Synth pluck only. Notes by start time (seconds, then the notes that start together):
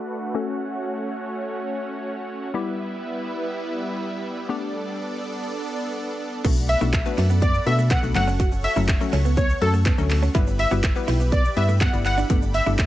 0.34 A3 C#4 F#4 A4
2.54 G3 B3 E4 G4
4.49 A3 B3 D4 G4
6.44 A3 B3 D4 F#4 A4
6.81 A3 B3 D4 F#4 A4
7.05 A3 B3 D4 F#4 B4
7.66 A3 B3 D4 F#4 A4
8.03 A3 B3 D4 F#4 A4
8.15 F#3 A3 C#4 F#4 A4
8.76 F#3 A3 C#4 F#4 A4
9.00 F#3 A3 C#4 F#4 A4
9.61 F#3 A3 C#4 F#4 A4
9.98 F#3 A3 C#4 F#4 A4
10.35 G3 B3 E4 G4 B4
10.71 G3 B3 E4 G4 B4
10.96 G3 B3 E4 G4 B4
11.57 G3 B3 E4 G4 B4
11.93 G3 B3 E4 G4 D5
12.30 A3 B3 D4 G4 A4
12.66 A3 B3 D4 G4 A4